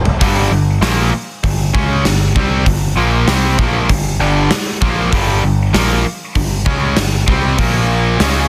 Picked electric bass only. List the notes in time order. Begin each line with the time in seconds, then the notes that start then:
0.21 G1
0.51 G1
0.82 A#1
1.12 muted picked electric bass stroke
1.44 G1
1.75 C#2
2.04 G1
2.35 C2
2.66 G1
2.96 A#1
3.27 C2
3.89 G1
4.19 G1
4.82 A#1
5.13 G1
5.43 G1
5.74 A#1
6.05 muted picked electric bass stroke
6.36 G1
6.66 C#2
6.97 G1
7.28 C2
7.59 A#1
8.20 C#2